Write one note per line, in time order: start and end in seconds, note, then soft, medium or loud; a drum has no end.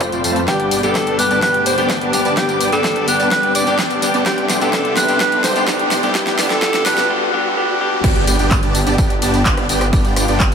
0.00 0.10 F1 loud
0.00 0.45 F3 medium
0.00 0.45 A3 medium
0.00 0.10 A3 medium
0.00 0.44 C4 medium
0.00 0.45 C4 medium
0.00 0.10 C4 medium
0.00 0.46 F4 loud
0.00 0.10 F4 medium
0.00 0.44 A4 medium
0.00 0.10 C5 medium
0.00 0.10 D5 medium
0.00 0.44 F5 medium
0.00 0.46 B5 medium
0.00 kick loud
0.00 closed hi-hat medium
0.00 tambourine soft
0.00 riser medium
0.12 0.22 F1 medium
0.12 0.22 A3 medium
0.12 0.22 C4 medium
0.12 0.22 F4 medium
0.12 0.22 C5 medium
0.12 0.22 D5 medium
0.12 closed hi-hat soft
0.12 tambourine soft
0.24 0.46 F2 medium
0.24 0.41 A3 medium
0.24 0.41 C4 medium
0.24 0.41 F4 medium
0.24 0.41 C5 medium
0.24 0.41 A5 medium
0.24 open hi-hat loud
0.24 tambourine medium
0.36 closed hi-hat soft
0.36 tambourine soft
0.47 0.69 G1 medium
0.47 0.80 G2 medium
0.47 0.80 G3 medium
0.47 0.81 B3 medium
0.47 0.69 B3 medium
0.47 0.69 D4 medium
0.47 0.81 D4 medium
0.47 0.85 G4 medium
0.47 0.69 G4 medium
0.47 0.81 G4 medium
0.47 4.22 B4 medium
0.47 4.22 D5 medium
0.47 0.69 D5 medium
0.47 6.11 G5 medium
0.47 0.69 G5 medium
0.47 4.22 D6 medium
0.47 kick loud
0.47 snare soft
0.47 closed hi-hat medium
0.47 tambourine soft
0.60 closed hi-hat soft
0.71 0.81 G1 loud
0.71 0.81 B3 medium
0.71 0.81 D4 medium
0.71 0.81 G4 medium
0.71 0.81 D5 medium
0.71 0.81 G5 medium
0.71 open hi-hat loud
0.71 tambourine medium
0.83 1.05 G1 loud
0.83 1.16 G2 medium
0.83 1.16 G3 medium
0.83 1.16 B3 medium
0.83 1.04 B3 medium
0.83 1.04 D4 medium
0.83 1.16 D4 medium
0.83 1.04 G4 medium
0.83 1.16 G4 medium
0.83 1.20 A4 medium
0.83 1.04 D5 medium
0.83 1.04 G5 medium
0.83 closed hi-hat soft
0.83 tambourine soft
0.95 kick loud
0.95 snare soft
0.95 closed hi-hat medium
0.95 tambourine soft
1.07 1.28 G1 loud
1.07 1.23 B3 medium
1.07 1.23 D4 medium
1.07 1.23 G4 medium
1.07 1.23 D5 medium
1.07 1.23 A5 medium
1.07 closed hi-hat soft
1.18 1.40 G2 medium
1.18 1.40 G3 medium
1.18 1.41 B3 medium
1.18 1.41 D4 medium
1.18 1.41 G4 medium
1.18 1.42 B4 medium
1.18 open hi-hat loud
1.18 tambourine medium
1.31 1.40 G1 medium
1.31 1.40 B3 medium
1.31 1.40 D4 medium
1.31 1.40 G4 medium
1.31 1.40 D5 medium
1.31 1.40 A5 medium
1.31 closed hi-hat soft
1.31 tambourine soft
1.42 1.64 G1 loud
1.42 1.75 G2 medium
1.42 1.75 G3 medium
1.42 1.75 B3 medium
1.42 1.63 B3 medium
1.42 1.63 D4 medium
1.42 1.75 D4 medium
1.42 1.63 G4 medium
1.42 1.75 G4 medium
1.42 1.64 B4 loud
1.42 1.63 D5 medium
1.42 1.63 G5 medium
1.42 kick loud
1.42 snare medium
1.42 closed hi-hat medium
1.42 tambourine soft
1.54 closed hi-hat soft
1.66 1.76 G1 medium
1.66 1.75 B3 medium
1.66 1.75 D4 medium
1.66 1.75 G4 medium
1.66 1.88 C5 medium
1.66 1.75 D5 medium
1.66 1.75 G5 medium
1.66 open hi-hat loud
1.66 tambourine medium
1.77 1.99 G1 loud
1.77 2.10 G2 medium
1.77 2.10 G3 medium
1.77 2.11 B3 medium
1.77 1.99 B3 medium
1.77 1.99 D4 medium
1.77 2.11 D4 medium
1.77 1.99 G4 medium
1.77 2.11 G4 medium
1.77 1.99 D5 medium
1.77 1.99 G5 medium
1.77 closed hi-hat soft
1.77 tambourine soft
1.90 kick loud
1.90 snare medium
1.90 closed hi-hat medium
1.90 tambourine soft
2.01 2.23 G1 medium
2.01 2.18 B3 medium
2.01 2.18 D4 medium
2.01 2.18 G4 medium
2.01 2.18 D5 medium
2.01 2.18 A5 medium
2.01 closed hi-hat soft
2.12 2.34 G2 medium
2.12 2.35 G3 medium
2.12 2.35 B3 medium
2.12 2.35 D4 medium
2.12 2.36 G4 loud
2.12 open hi-hat loud
2.12 tambourine medium
2.25 2.35 G1 loud
2.25 2.34 B3 medium
2.25 2.34 D4 medium
2.25 2.34 G4 medium
2.25 2.34 D5 medium
2.25 2.34 A5 loud
2.25 closed hi-hat soft
2.25 tambourine soft
2.36 2.58 G1 medium
2.36 2.69 G2 medium
2.36 2.69 G3 medium
2.36 2.70 B3 medium
2.36 2.58 B3 medium
2.36 2.58 D4 medium
2.36 2.70 D4 medium
2.36 2.70 G4 medium
2.36 2.58 G4 medium
2.36 2.70 G4 medium
2.36 2.58 D5 medium
2.36 2.58 G5 loud
2.36 kick loud
2.36 snare medium
2.36 closed hi-hat medium
2.36 tambourine soft
2.49 closed hi-hat soft
2.49 tambourine soft
2.61 2.70 G1 loud
2.61 2.70 B3 medium
2.61 2.70 D4 medium
2.61 2.70 G4 medium
2.61 2.70 D5 medium
2.61 2.70 G5 medium
2.61 open hi-hat loud
2.61 tambourine medium
2.72 2.94 G1 loud
2.72 3.05 G2 medium
2.72 3.05 G3 medium
2.72 3.05 B3 medium
2.72 2.93 B3 medium
2.72 2.93 D4 medium
2.72 3.05 D4 medium
2.72 2.93 G4 medium
2.72 3.05 G4 loud
2.72 3.10 A4 loud
2.72 2.93 D5 medium
2.72 2.93 G5 medium
2.72 closed hi-hat soft
2.72 tambourine soft
2.84 kick loud
2.84 snare medium
2.84 closed hi-hat medium
2.84 tambourine soft
2.96 3.17 G1 medium
2.96 3.12 B3 medium
2.96 3.12 D4 medium
2.96 3.12 G4 medium
2.96 3.12 D5 medium
2.96 3.12 A5 loud
2.96 closed hi-hat soft
3.07 3.29 G2 medium
3.07 3.29 G3 medium
3.07 3.30 B3 medium
3.07 3.30 D4 medium
3.07 3.30 G4 medium
3.07 3.31 B4 loud
3.07 open hi-hat loud
3.07 tambourine medium
3.20 3.29 G1 loud
3.20 3.29 B3 medium
3.20 3.29 D4 medium
3.20 3.29 G4 medium
3.20 3.29 D5 medium
3.20 3.29 A5 medium
3.20 closed hi-hat soft
3.20 tambourine soft
3.31 3.53 G1 loud
3.31 3.64 G2 medium
3.31 3.64 G3 medium
3.31 3.64 B3 medium
3.31 3.64 D4 medium
3.31 3.64 G4 medium
3.31 3.54 B4 loud
3.31 kick loud
3.31 snare medium
3.31 closed hi-hat medium
3.31 tambourine soft
3.43 closed hi-hat soft
3.55 3.65 G1 medium
3.55 3.64 B3 medium
3.55 3.64 D4 medium
3.55 3.64 G4 medium
3.55 3.64 D5 medium
3.55 3.77 D5 loud
3.55 3.64 G5 medium
3.55 open hi-hat loud
3.55 tambourine medium
3.66 3.88 G1 loud
3.66 3.99 G2 medium
3.66 3.99 G3 medium
3.66 3.88 B3 medium
3.66 4.00 B3 medium
3.66 3.88 D4 medium
3.66 4.00 D4 medium
3.66 3.88 G4 medium
3.66 4.00 G4 loud
3.66 3.88 D5 medium
3.66 3.88 G5 medium
3.66 closed hi-hat soft
3.66 tambourine soft
3.79 kick loud
3.79 snare medium
3.79 closed hi-hat medium
3.79 tambourine soft
3.91 4.12 G1 medium
3.91 4.07 B3 medium
3.91 4.07 D4 medium
3.91 4.07 G4 medium
3.91 4.07 D5 medium
3.91 4.07 A5 loud
3.91 closed hi-hat soft
3.91 tambourine soft
4.01 4.24 G2 medium
4.01 4.24 G3 medium
4.01 4.24 B3 medium
4.01 4.25 D4 medium
4.01 4.25 G4 medium
4.01 open hi-hat loud
4.01 tambourine medium
4.14 4.24 G2 medium
4.14 4.23 B3 medium
4.14 4.23 D4 medium
4.14 4.23 G4 medium
4.14 4.23 D5 medium
4.14 4.23 A5 loud
4.14 closed hi-hat soft
4.14 tambourine soft
4.25 4.47 C2 loud
4.25 4.58 G2 medium
4.25 4.58 G3 medium
4.25 4.59 B3 medium
4.25 4.47 B3 medium
4.25 4.47 D4 medium
4.25 4.59 D4 medium
4.25 4.47 G4 medium
4.25 4.63 G4 medium
4.25 4.59 G4 medium
4.25 7.07 A4 medium
4.25 4.47 D5 medium
4.25 7.07 E5 medium
4.25 7.07 C6 medium
4.25 kick loud
4.25 snare medium
4.25 closed hi-hat medium
4.25 tambourine soft
4.38 closed hi-hat soft
4.49 4.59 C2 medium
4.49 4.59 B3 medium
4.49 4.59 D4 medium
4.49 4.59 G4 medium
4.49 4.59 D5 medium
4.49 4.59 G5 medium
4.49 snare medium
4.49 open hi-hat loud
4.49 tambourine medium
4.61 4.71 C2 loud
4.61 4.71 G2 loud
4.61 4.71 G3 medium
4.61 4.71 B3 medium
4.61 4.71 D4 medium
4.61 4.71 G4 medium
4.61 4.72 G4 loud
4.61 4.96 A4 loud
4.61 4.71 D5 medium
4.61 4.71 G5 medium
4.61 closed hi-hat soft
4.61 tambourine soft
4.73 4.94 C2 medium
4.73 5.06 G2 medium
4.73 5.06 G3 medium
4.73 5.06 B3 medium
4.73 4.94 D4 medium
4.73 5.06 D4 medium
4.73 5.06 G4 medium
4.73 4.94 D5 medium
4.73 kick loud
4.73 snare medium
4.73 closed hi-hat medium
4.73 tambourine soft
4.85 closed hi-hat soft
4.97 5.06 C2 loud
4.97 5.06 B3 medium
4.97 5.06 D4 medium
4.97 5.06 G4 medium
4.97 5.19 B4 loud
4.97 5.06 D5 medium
4.97 5.06 G5 medium
4.97 snare medium
4.97 open hi-hat loud
4.97 tambourine medium
5.08 5.18 C2 loud
5.08 5.18 G2 medium
5.08 5.18 G3 medium
5.08 5.19 B3 medium
5.08 5.19 D4 medium
5.08 5.19 G4 medium
5.08 5.19 G4 loud
5.08 5.19 D5 medium
5.08 5.19 G5 medium
5.08 closed hi-hat soft
5.08 tambourine soft
5.20 5.42 C2 loud
5.20 5.53 G2 medium
5.20 5.53 G3 medium
5.20 5.53 B3 medium
5.20 5.41 B3 medium
5.20 5.41 D4 medium
5.20 5.53 D4 medium
5.20 5.41 G4 medium
5.20 5.53 G4 medium
5.20 5.42 B4 loud
5.20 5.41 G5 loud
5.20 kick loud
5.20 snare medium
5.20 closed hi-hat medium
5.20 tambourine medium
5.32 closed hi-hat soft
5.44 5.54 C2 medium
5.44 5.53 B3 medium
5.44 5.53 D4 medium
5.44 5.53 G4 medium
5.44 5.66 C5 loud
5.44 5.53 D5 medium
5.44 5.53 G5 medium
5.44 snare medium
5.44 open hi-hat loud
5.44 tambourine medium
5.55 5.65 C2 loud
5.55 5.66 G2 medium
5.55 5.66 G3 medium
5.55 5.66 B3 medium
5.55 5.66 D4 medium
5.55 5.66 G4 medium
5.55 5.66 G4 loud
5.55 5.66 D5 medium
5.55 5.66 G5 loud
5.55 closed hi-hat soft
5.55 tambourine soft
5.67 5.89 C2 loud
5.67 6.00 G2 medium
5.67 6.00 G3 medium
5.67 5.88 B3 medium
5.67 6.00 B3 medium
5.67 5.88 D4 medium
5.67 6.00 D4 medium
5.67 5.88 G4 medium
5.67 6.01 G4 medium
5.67 5.88 D5 medium
5.67 5.88 G5 loud
5.67 kick loud
5.67 snare medium
5.67 closed hi-hat medium
5.67 tambourine soft
5.79 closed hi-hat soft
5.91 6.01 C2 medium
5.91 6.00 B3 medium
5.91 6.00 D4 medium
5.91 6.00 G4 medium
5.91 6.00 D5 medium
5.91 6.00 G5 medium
5.91 snare medium
5.91 open hi-hat loud
5.91 tambourine medium
6.03 6.13 C2 loud
6.03 6.13 G2 loud
6.03 6.13 G3 medium
6.03 6.13 B3 medium
6.03 6.13 D4 medium
6.03 6.13 G4 medium
6.03 6.13 G4 loud
6.03 6.13 D5 medium
6.03 6.13 G5 medium
6.03 closed hi-hat soft
6.03 tambourine soft
6.14 6.36 C2 loud
6.14 6.36 G2 medium
6.14 6.37 G3 medium
6.14 6.36 B3 medium
6.14 6.37 B3 medium
6.14 6.52 G4 medium
6.14 6.37 G4 medium
6.14 7.08 A5 medium
6.14 kick loud
6.14 snare medium
6.14 closed hi-hat medium
6.14 tambourine soft
6.27 snare medium
6.27 closed hi-hat soft
6.27 tambourine soft
6.38 6.60 C2 loud
6.38 6.60 G2 medium
6.38 6.60 G3 medium
6.38 6.59 B3 loud
6.38 6.60 B3 medium
6.38 6.59 D4 medium
6.38 6.61 D4 medium
6.38 6.59 G4 medium
6.38 6.61 G4 medium
6.38 6.59 D5 medium
6.38 6.59 G5 loud
6.38 snare loud
6.38 open hi-hat loud
6.38 tambourine medium
6.50 6.87 A4 loud
6.50 snare medium
6.50 closed hi-hat soft
6.50 tambourine soft
6.62 6.83 C2 loud
6.62 6.84 G2 medium
6.62 6.84 G3 medium
6.62 6.84 B3 medium
6.62 6.83 D4 medium
6.62 6.84 D4 medium
6.62 6.83 G4 medium
6.62 6.84 G4 medium
6.62 6.83 D5 medium
6.62 6.83 G5 loud
6.62 kick loud
6.62 snare loud
6.62 closed hi-hat medium
6.62 tambourine soft
6.74 snare medium
6.74 closed hi-hat soft
6.74 tambourine soft
6.85 7.07 C2 loud
6.85 7.07 G2 medium
6.85 7.07 G3 medium
6.85 7.06 B3 medium
6.85 7.08 B3 medium
6.85 7.06 D4 medium
6.85 7.08 D4 medium
6.85 7.07 G4 medium
6.85 7.08 G4 medium
6.85 7.09 B4 loud
6.85 7.07 D5 medium
6.85 7.06 G5 loud
6.85 snare loud
6.85 open hi-hat loud
6.85 tambourine medium
6.98 snare medium
6.98 closed hi-hat soft
6.98 tambourine soft
7.09 7.31 G2 medium
7.09 7.31 G3 medium
7.09 7.31 B3 medium
7.09 7.31 D4 medium
7.09 7.31 G4 medium
7.33 7.55 G2 medium
7.33 7.55 G3 medium
7.33 7.55 B3 medium
7.33 7.55 D4 medium
7.33 7.55 G4 medium
7.56 7.78 G2 medium
7.56 7.78 G3 medium
7.56 7.78 B3 medium
7.56 7.79 D4 medium
7.56 7.79 G4 medium
7.80 8.02 G2 medium
7.80 8.02 G3 medium
7.80 8.02 B3 medium
7.80 8.02 D4 medium
7.80 8.02 G4 medium
8.04 8.25 G1 medium
8.04 8.25 B3 medium
8.04 10.54 B3 medium
8.04 8.25 D4 medium
8.04 10.54 D4 medium
8.04 8.25 G4 medium
8.04 9.91 G4 medium
8.04 8.25 D5 medium
8.04 8.25 G5 loud
8.04 kick loud
8.04 closed hi-hat medium
8.04 crash loud
8.04 tambourine soft
8.04 impact medium
8.16 closed hi-hat soft
8.27 8.37 G1 loud
8.27 8.36 B3 medium
8.27 8.36 D4 medium
8.27 8.36 G4 medium
8.27 8.36 D5 medium
8.27 8.36 G5 medium
8.27 open hi-hat loud
8.27 tambourine medium
8.39 8.61 G1 loud
8.39 8.60 B3 medium
8.39 8.60 D4 medium
8.39 8.60 G4 medium
8.39 8.60 D5 medium
8.39 8.60 G5 medium
8.39 closed hi-hat soft
8.39 tambourine soft
8.51 kick loud
8.51 clap loud
8.51 closed hi-hat medium
8.51 tambourine soft
8.63 8.84 G1 loud
8.63 8.79 B3 medium
8.63 8.79 D4 medium
8.63 8.79 G4 medium
8.63 8.79 D5 medium
8.63 8.79 A5 loud
8.63 closed hi-hat soft
8.75 open hi-hat loud
8.75 tambourine medium
8.87 8.96 G1 loud
8.87 8.96 B3 loud
8.87 8.96 D4 medium
8.87 8.96 G4 medium
8.87 8.96 D5 medium
8.87 8.96 A5 loud
8.87 closed hi-hat soft
8.87 tambourine soft
8.98 9.20 G1 loud
8.98 9.15 B3 medium
8.98 9.15 G4 medium
8.98 9.15 G5 medium
8.98 kick loud
8.98 closed hi-hat medium
8.98 tambourine soft
9.10 closed hi-hat soft
9.22 9.43 G1 loud
9.22 9.42 B3 medium
9.22 9.42 D4 medium
9.22 9.42 G4 medium
9.22 9.42 D5 medium
9.22 9.42 A5 medium
9.22 open hi-hat loud
9.22 tambourine medium
9.34 closed hi-hat soft
9.34 tambourine soft
9.46 9.55 G1 loud
9.46 9.55 B3 medium
9.46 9.55 D4 medium
9.46 9.55 D5 medium
9.46 9.55 F5 medium
9.46 kick loud
9.46 clap loud
9.46 closed hi-hat medium
9.46 tambourine soft
9.57 9.67 G1 medium
9.57 9.66 B3 medium
9.57 9.66 D4 medium
9.57 9.66 G4 medium
9.57 9.66 D5 medium
9.57 9.66 F5 medium
9.57 cross-stick medium
9.57 closed hi-hat soft
9.69 9.91 G1 loud
9.69 9.85 B3 medium
9.69 9.85 D4 medium
9.69 9.85 G4 medium
9.69 9.85 D5 medium
9.69 9.85 G5 medium
9.69 open hi-hat loud
9.69 tambourine medium
9.81 cross-stick medium
9.81 closed hi-hat soft
9.81 tambourine soft
9.93 10.14 G1 medium
9.93 10.14 B3 medium
9.93 10.14 D4 medium
9.93 10.54 F4 medium
9.93 10.14 G4 medium
9.93 10.14 D5 medium
9.93 10.14 G5 loud
9.93 kick loud
9.93 closed hi-hat medium
9.93 tambourine soft
10.05 closed hi-hat soft
10.05 tambourine soft
10.16 10.26 G1 loud
10.16 10.26 B3 medium
10.16 10.26 D4 medium
10.16 10.26 G4 medium
10.16 10.26 D5 medium
10.16 10.26 G5 medium
10.16 cross-stick medium
10.16 open hi-hat loud
10.16 tambourine medium
10.28 10.50 G1 loud
10.28 10.49 B3 medium
10.28 10.49 D4 medium
10.28 10.49 G4 medium
10.28 10.49 D5 medium
10.28 10.49 G5 medium
10.28 closed hi-hat soft
10.28 tambourine soft
10.40 kick loud
10.40 clap loud
10.40 closed hi-hat medium
10.40 tambourine soft